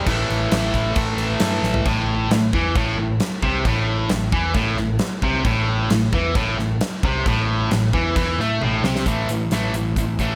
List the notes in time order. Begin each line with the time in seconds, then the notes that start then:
0.06 A1 A2 E3 A3, kick, crash
0.30 A1, crash
0.51 A1, snare, crash
0.74 A1, kick, crash
0.96 A1, kick, crash
1.18 A1, crash
1.40 G2, snare, crash
1.63 A1, snare
1.74 floor tom
1.85 A1 A2, kick, crash
2.30 A1 A2, snare, crash
2.53 E2 E3, kick
2.76 A1 A2, kick, crash
2.98 A1 A2
3.20 snare, crash
3.42 C2 C3, kick
3.65 A1 A2, kick, crash
4.09 A1 A2, snare, crash
4.32 E2 E3, kick
4.54 A1 A2, kick, crash
4.77 A1 A2, snare
4.99 snare, crash
5.22 C2 C3, kick
5.45 A1 A2, kick, crash
5.90 A1 A2, snare, crash
6.12 E2 E3, kick
6.35 A1 A2, kick, crash
6.59 A1 A2, snare
6.81 snare, crash
7.03 C2 C3, kick
7.26 A1 A2, kick, crash
7.71 A1 A2, snare, crash
7.93 E2 E3, kick
8.15 E2 E3, kick, crash
8.38 A2 A3, snare
8.61 A1 A2, high tom
8.83 C2 C3, snare
8.96 snare
9.06 A1 A2 E3 A3, kick, closed hi-hat
9.29 A1 A2 E3, closed hi-hat
9.51 A1 A2 E3 A3, snare, closed hi-hat
9.73 A1 A2 E3, closed hi-hat
9.96 A1 A2 E3, kick, closed hi-hat
10.19 A1 A2 E3 A3, kick, closed hi-hat